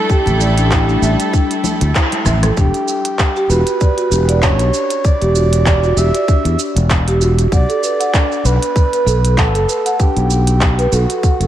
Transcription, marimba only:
0, 0, Header, 1, 2, 480
1, 0, Start_track
1, 0, Tempo, 618557
1, 76, Time_signature, 4, 2, 24, 8
1, 8901, End_track
2, 0, Start_track
2, 0, Title_t, "Marimba"
2, 0, Program_c, 0, 12
2, 72, Note_on_c, 0, 67, 73
2, 304, Note_off_c, 0, 67, 0
2, 316, Note_on_c, 0, 74, 74
2, 437, Note_off_c, 0, 74, 0
2, 449, Note_on_c, 0, 62, 92
2, 550, Note_off_c, 0, 62, 0
2, 557, Note_on_c, 0, 64, 84
2, 684, Note_off_c, 0, 64, 0
2, 690, Note_on_c, 0, 62, 80
2, 750, Note_off_c, 0, 62, 0
2, 793, Note_on_c, 0, 76, 97
2, 1024, Note_off_c, 0, 76, 0
2, 1036, Note_on_c, 0, 62, 81
2, 1157, Note_off_c, 0, 62, 0
2, 1514, Note_on_c, 0, 64, 79
2, 1643, Note_off_c, 0, 64, 0
2, 1756, Note_on_c, 0, 76, 72
2, 1833, Note_off_c, 0, 76, 0
2, 1890, Note_on_c, 0, 69, 76
2, 1991, Note_off_c, 0, 69, 0
2, 1999, Note_on_c, 0, 62, 78
2, 2467, Note_off_c, 0, 62, 0
2, 2613, Note_on_c, 0, 67, 104
2, 2713, Note_off_c, 0, 67, 0
2, 2716, Note_on_c, 0, 66, 97
2, 2946, Note_off_c, 0, 66, 0
2, 2955, Note_on_c, 0, 74, 78
2, 3076, Note_off_c, 0, 74, 0
2, 3085, Note_on_c, 0, 66, 105
2, 3188, Note_off_c, 0, 66, 0
2, 3193, Note_on_c, 0, 67, 83
2, 3322, Note_off_c, 0, 67, 0
2, 3328, Note_on_c, 0, 74, 103
2, 3389, Note_off_c, 0, 74, 0
2, 3435, Note_on_c, 0, 62, 79
2, 3905, Note_off_c, 0, 62, 0
2, 4048, Note_on_c, 0, 67, 108
2, 4150, Note_off_c, 0, 67, 0
2, 4155, Note_on_c, 0, 66, 90
2, 4385, Note_off_c, 0, 66, 0
2, 4396, Note_on_c, 0, 74, 80
2, 4517, Note_off_c, 0, 74, 0
2, 4530, Note_on_c, 0, 66, 106
2, 4631, Note_off_c, 0, 66, 0
2, 4635, Note_on_c, 0, 67, 75
2, 4763, Note_off_c, 0, 67, 0
2, 4770, Note_on_c, 0, 74, 100
2, 4830, Note_off_c, 0, 74, 0
2, 4874, Note_on_c, 0, 62, 85
2, 5344, Note_off_c, 0, 62, 0
2, 5491, Note_on_c, 0, 67, 97
2, 5591, Note_off_c, 0, 67, 0
2, 5597, Note_on_c, 0, 66, 101
2, 5826, Note_off_c, 0, 66, 0
2, 5838, Note_on_c, 0, 78, 80
2, 5958, Note_off_c, 0, 78, 0
2, 5967, Note_on_c, 0, 69, 113
2, 6069, Note_off_c, 0, 69, 0
2, 6073, Note_on_c, 0, 71, 75
2, 6202, Note_off_c, 0, 71, 0
2, 6207, Note_on_c, 0, 78, 104
2, 6269, Note_off_c, 0, 78, 0
2, 6316, Note_on_c, 0, 62, 86
2, 6785, Note_off_c, 0, 62, 0
2, 6929, Note_on_c, 0, 71, 97
2, 7030, Note_off_c, 0, 71, 0
2, 7035, Note_on_c, 0, 69, 111
2, 7265, Note_off_c, 0, 69, 0
2, 7274, Note_on_c, 0, 78, 82
2, 7396, Note_off_c, 0, 78, 0
2, 7409, Note_on_c, 0, 69, 93
2, 7510, Note_off_c, 0, 69, 0
2, 7512, Note_on_c, 0, 71, 71
2, 7642, Note_off_c, 0, 71, 0
2, 7649, Note_on_c, 0, 78, 98
2, 7710, Note_off_c, 0, 78, 0
2, 7757, Note_on_c, 0, 62, 76
2, 8226, Note_off_c, 0, 62, 0
2, 8370, Note_on_c, 0, 71, 102
2, 8471, Note_off_c, 0, 71, 0
2, 8477, Note_on_c, 0, 69, 102
2, 8706, Note_off_c, 0, 69, 0
2, 8723, Note_on_c, 0, 78, 77
2, 8840, Note_off_c, 0, 78, 0
2, 8852, Note_on_c, 0, 69, 96
2, 8901, Note_off_c, 0, 69, 0
2, 8901, End_track
0, 0, End_of_file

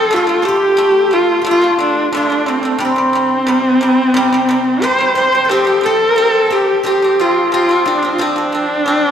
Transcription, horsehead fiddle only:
0, 0, Header, 1, 2, 480
1, 0, Start_track
1, 0, Tempo, 674157
1, 85, Time_signature, 4, 2, 24, 8
1, 6486, End_track
2, 0, Start_track
2, 0, Title_t, "Horsehead fiddle"
2, 0, Program_c, 0, 110
2, 0, Note_on_c, 0, 69, 98
2, 100, Note_on_c, 0, 65, 95
2, 111, Note_off_c, 0, 69, 0
2, 327, Note_on_c, 0, 67, 110
2, 338, Note_off_c, 0, 65, 0
2, 807, Note_on_c, 0, 65, 98
2, 818, Note_off_c, 0, 67, 0
2, 1046, Note_off_c, 0, 65, 0
2, 1056, Note_on_c, 0, 65, 103
2, 1274, Note_off_c, 0, 65, 0
2, 1288, Note_on_c, 0, 62, 84
2, 1510, Note_off_c, 0, 62, 0
2, 1534, Note_on_c, 0, 62, 89
2, 1770, Note_on_c, 0, 60, 84
2, 1780, Note_off_c, 0, 62, 0
2, 2007, Note_off_c, 0, 60, 0
2, 2014, Note_on_c, 0, 60, 105
2, 3444, Note_on_c, 0, 72, 101
2, 3454, Note_off_c, 0, 60, 0
2, 3676, Note_off_c, 0, 72, 0
2, 3680, Note_on_c, 0, 72, 100
2, 3918, Note_on_c, 0, 67, 100
2, 3929, Note_off_c, 0, 72, 0
2, 4168, Note_on_c, 0, 69, 103
2, 4179, Note_off_c, 0, 67, 0
2, 4647, Note_on_c, 0, 67, 96
2, 4658, Note_off_c, 0, 69, 0
2, 4886, Note_off_c, 0, 67, 0
2, 4889, Note_on_c, 0, 67, 98
2, 5136, Note_on_c, 0, 65, 86
2, 5147, Note_off_c, 0, 67, 0
2, 5370, Note_off_c, 0, 65, 0
2, 5374, Note_on_c, 0, 65, 91
2, 5565, Note_off_c, 0, 65, 0
2, 5565, Note_on_c, 0, 65, 64
2, 5622, Note_on_c, 0, 62, 93
2, 5632, Note_off_c, 0, 65, 0
2, 5799, Note_off_c, 0, 62, 0
2, 5803, Note_on_c, 0, 65, 71
2, 5862, Note_on_c, 0, 62, 109
2, 5873, Note_off_c, 0, 65, 0
2, 6486, Note_off_c, 0, 62, 0
2, 6486, End_track
0, 0, End_of_file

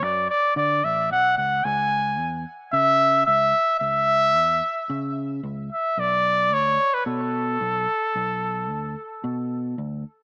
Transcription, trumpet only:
0, 0, Header, 1, 2, 480
1, 0, Start_track
1, 0, Tempo, 542495
1, 1455, Time_signature, 4, 2, 24, 8
1, 9052, End_track
2, 0, Start_track
2, 0, Title_t, "Trumpet"
2, 0, Program_c, 0, 56
2, 29, Note_on_c, 0, 74, 90
2, 258, Note_off_c, 0, 74, 0
2, 263, Note_on_c, 0, 74, 104
2, 483, Note_off_c, 0, 74, 0
2, 504, Note_on_c, 0, 74, 104
2, 746, Note_on_c, 0, 76, 102
2, 759, Note_off_c, 0, 74, 0
2, 981, Note_off_c, 0, 76, 0
2, 986, Note_on_c, 0, 78, 104
2, 1204, Note_off_c, 0, 78, 0
2, 1217, Note_on_c, 0, 78, 97
2, 1453, Note_on_c, 0, 80, 105
2, 1466, Note_off_c, 0, 78, 0
2, 2173, Note_off_c, 0, 80, 0
2, 2416, Note_on_c, 0, 76, 117
2, 2860, Note_off_c, 0, 76, 0
2, 2885, Note_on_c, 0, 76, 116
2, 3334, Note_off_c, 0, 76, 0
2, 3359, Note_on_c, 0, 76, 121
2, 4769, Note_off_c, 0, 76, 0
2, 5064, Note_on_c, 0, 76, 98
2, 5305, Note_on_c, 0, 74, 115
2, 5318, Note_off_c, 0, 76, 0
2, 5782, Note_on_c, 0, 73, 114
2, 5796, Note_off_c, 0, 74, 0
2, 6139, Note_on_c, 0, 71, 99
2, 6152, Note_off_c, 0, 73, 0
2, 6246, Note_off_c, 0, 71, 0
2, 6251, Note_on_c, 0, 69, 94
2, 8619, Note_off_c, 0, 69, 0
2, 9052, End_track
0, 0, End_of_file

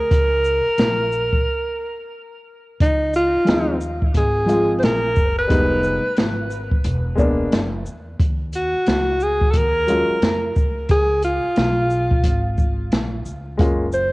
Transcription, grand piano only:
0, 0, Header, 1, 2, 480
1, 0, Start_track
1, 0, Key_signature, -5, "major"
1, 0, Tempo, 674157
1, 74, Time_signature, 4, 2, 24, 8
1, 10056, End_track
2, 0, Start_track
2, 0, Title_t, "Grand piano"
2, 0, Program_c, 0, 0
2, 2454, Note_on_c, 0, 53, 62
2, 2464, Note_on_c, 0, 56, 61
2, 2470, Note_on_c, 0, 60, 62
2, 2479, Note_on_c, 0, 63, 71
2, 2650, Note_off_c, 0, 53, 0
2, 2655, Note_off_c, 0, 56, 0
2, 2658, Note_off_c, 0, 60, 0
2, 2662, Note_off_c, 0, 63, 0
2, 3174, Note_on_c, 0, 53, 65
2, 3184, Note_on_c, 0, 56, 61
2, 3187, Note_on_c, 0, 60, 62
2, 3198, Note_on_c, 0, 65, 72
2, 3543, Note_off_c, 0, 53, 0
2, 3549, Note_off_c, 0, 56, 0
2, 3550, Note_off_c, 0, 60, 0
2, 3555, Note_off_c, 0, 65, 0
2, 3896, Note_on_c, 0, 55, 67
2, 3902, Note_on_c, 0, 56, 64
2, 3909, Note_on_c, 0, 59, 63
2, 3919, Note_on_c, 0, 63, 77
2, 4265, Note_off_c, 0, 55, 0
2, 4267, Note_off_c, 0, 56, 0
2, 4271, Note_off_c, 0, 59, 0
2, 4276, Note_off_c, 0, 63, 0
2, 5096, Note_on_c, 0, 56, 72
2, 5105, Note_on_c, 0, 58, 71
2, 5113, Note_on_c, 0, 59, 68
2, 5122, Note_on_c, 0, 62, 85
2, 5405, Note_off_c, 0, 56, 0
2, 5409, Note_off_c, 0, 58, 0
2, 5413, Note_off_c, 0, 59, 0
2, 5418, Note_off_c, 0, 62, 0
2, 7026, Note_on_c, 0, 54, 62
2, 7036, Note_on_c, 0, 56, 58
2, 7042, Note_on_c, 0, 61, 57
2, 7049, Note_on_c, 0, 65, 69
2, 7215, Note_off_c, 0, 54, 0
2, 7220, Note_off_c, 0, 56, 0
2, 7223, Note_off_c, 0, 61, 0
2, 7227, Note_off_c, 0, 65, 0
2, 9666, Note_on_c, 0, 56, 72
2, 9676, Note_on_c, 0, 58, 62
2, 9681, Note_on_c, 0, 61, 59
2, 9687, Note_on_c, 0, 65, 74
2, 9855, Note_off_c, 0, 56, 0
2, 9860, Note_off_c, 0, 58, 0
2, 9863, Note_off_c, 0, 61, 0
2, 9866, Note_off_c, 0, 65, 0
2, 10056, End_track
0, 0, End_of_file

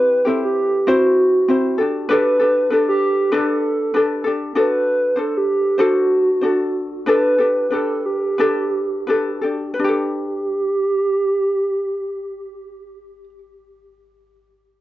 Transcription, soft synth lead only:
0, 0, Header, 1, 2, 480
1, 0, Start_track
1, 0, Key_signature, 1, "major"
1, 0, Tempo, 612870
1, 1647, Time_signature, 4, 2, 24, 8
1, 4050, Tempo, 636267
1, 5970, Tempo, 690449
1, 7410, Tempo, 723764
1, 10740, End_track
2, 0, Start_track
2, 0, Title_t, "Soft synth lead"
2, 0, Program_c, 0, 80
2, 0, Note_on_c, 0, 71, 115
2, 208, Note_on_c, 0, 69, 98
2, 220, Note_off_c, 0, 71, 0
2, 346, Note_off_c, 0, 69, 0
2, 351, Note_on_c, 0, 67, 98
2, 690, Note_on_c, 0, 66, 80
2, 702, Note_off_c, 0, 67, 0
2, 1408, Note_off_c, 0, 66, 0
2, 1648, Note_on_c, 0, 71, 112
2, 2117, Note_on_c, 0, 69, 94
2, 2129, Note_off_c, 0, 71, 0
2, 2257, Note_off_c, 0, 69, 0
2, 2262, Note_on_c, 0, 67, 83
2, 2598, Note_on_c, 0, 69, 86
2, 2610, Note_off_c, 0, 67, 0
2, 3324, Note_off_c, 0, 69, 0
2, 3595, Note_on_c, 0, 71, 105
2, 4064, Note_on_c, 0, 69, 88
2, 4075, Note_off_c, 0, 71, 0
2, 4203, Note_on_c, 0, 67, 95
2, 4214, Note_off_c, 0, 69, 0
2, 4534, Note_on_c, 0, 66, 87
2, 4545, Note_off_c, 0, 67, 0
2, 5242, Note_off_c, 0, 66, 0
2, 5480, Note_on_c, 0, 71, 112
2, 5942, Note_off_c, 0, 71, 0
2, 5977, Note_on_c, 0, 69, 89
2, 6206, Note_on_c, 0, 67, 82
2, 6217, Note_off_c, 0, 69, 0
2, 7163, Note_off_c, 0, 67, 0
2, 7412, Note_on_c, 0, 67, 94
2, 9526, Note_off_c, 0, 67, 0
2, 10740, End_track
0, 0, End_of_file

